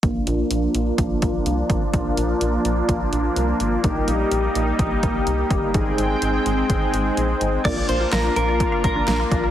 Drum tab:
CC |--------|--------|--------|--------|
HH |xxxxxxxx|xxxxxxxx|xxxxxxxx|xxxxxxxx|
SD |--------|--------|--------|--------|
BD |o---oo-o|o---o---|o---oo-o|o---o---|

CC |x-------|
HH |xxxxxxxx|
SD |--o---o-|
BD |o---oo-o|